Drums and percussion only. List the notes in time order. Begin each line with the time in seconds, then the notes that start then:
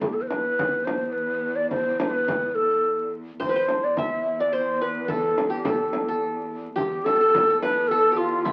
0.01 frame drum
0.31 frame drum
0.59 frame drum
0.87 frame drum
1.71 frame drum
2.00 frame drum
2.28 frame drum
3.40 frame drum
3.68 frame drum
3.97 frame drum
5.09 frame drum
5.38 frame drum
5.65 frame drum
5.93 frame drum
6.78 frame drum
7.06 frame drum
7.34 frame drum
7.63 frame drum
8.46 frame drum